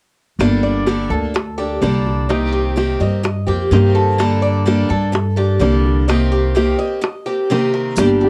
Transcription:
0.39 upright bass G1, steel-string acoustic guitar D3 G3 A#3 D4 A4, high bongo
0.63 cuban tres D5
0.86 steel-string acoustic guitar D3 G3 A#3 D4 A4, high bongo
1.10 upright bass D2, steel-string acoustic guitar A#3 D4 A4, cuban tres A4, high bongo
1.34 muted steel-string acoustic guitar stroke, high bongo
1.58 steel-string acoustic guitar A#3 D4 A4, cuban tres G4, high bongo
1.82 upright bass C2, steel-string acoustic guitar D3 G3 A#3 D4 A4, cuban tres D5, high bongo, low bongo
2.07 high bongo
2.29 steel-string acoustic guitar C3 D#3 A#3 C4 G4, cuban tres D#4, high bongo
2.53 cuban tres G4
2.76 steel-string acoustic guitar C3 D#3 A#3 C4 G4, high bongo
3.00 upright bass G2, steel-string acoustic guitar A#3 C4 G4, cuban tres D#5, high bongo
3.23 muted steel-string acoustic guitar stroke, high bongo
3.47 upright bass F2, steel-string acoustic guitar A#3 C4 G4, cuban tres G4, high bongo
3.71 upright bass G2, steel-string acoustic guitar C3 D#3 A#3 C4 G4, high bongo, low bongo
3.95 cuban tres A4, high bongo
4.18 steel-string acoustic guitar D3 G3 A#3 D4 A4, high bongo
4.42 cuban tres D5
4.66 steel-string acoustic guitar D3 G3 A#3 D4 A4, high bongo
4.89 upright bass G2, steel-string acoustic guitar A#3 D4 A4, cuban tres A4, high bongo
5.12 muted steel-string acoustic guitar stroke, high bongo
5.36 steel-string acoustic guitar A#3 D4 A4, cuban tres G4, high bongo
5.59 upright bass C2, steel-string acoustic guitar D3 G3 A#3 D4 A4, cuban tres D5, high bongo, low bongo
5.86 high bongo
6.08 steel-string acoustic guitar C3 D#3 A#3 C4 G4, cuban tres D#4, high bongo
6.32 cuban tres G4
6.55 steel-string acoustic guitar C3 D#3 A#3 C4 G4, high bongo
6.78 steel-string acoustic guitar A#3 C4 G4, cuban tres D#5, high bongo
7.01 muted steel-string acoustic guitar stroke, high bongo
7.26 steel-string acoustic guitar A#3 C4 G4, cuban tres G4, high bongo
7.50 steel-string acoustic guitar C3 D#3 A#3 C4 G4, high bongo, low bongo
7.74 cuban tres A#4, high bongo
7.96 upright bass G1, steel-string acoustic guitar D3 G3 A#3 D4 G4, high bongo, maracas
8.21 cuban tres G4, nylon-string guitar A4, maracas

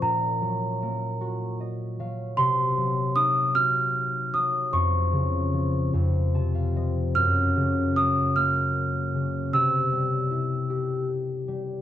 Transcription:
Already playing: harp C#4 F4
0.02 harp A#2, celesta A#5
0.41 harp F#3
0.82 harp A#3
1.21 harp F#4
1.60 harp D#5
1.99 harp F#3 F5
2.37 harp C3, celesta C6
2.77 harp F#3
3.16 harp D#4, celesta D#6
3.55 harp F#4, celesta F6
4.33 harp F#3, celesta D#6
4.73 harp F2, celesta C#6
5.12 harp C#3
5.53 harp F3
5.93 harp F2
6.34 harp C3 A5
6.55 harp F5
6.76 harp F3 D#5
7.15 harp F#2, celesta F6
7.56 harp C#3
7.96 harp F#3, celesta D#6
8.36 harp A#3, celesta F6
9.14 harp C#3
9.53 harp C3, celesta E6
9.92 harp G3
10.31 harp E4
10.70 harp G4
11.48 harp G3

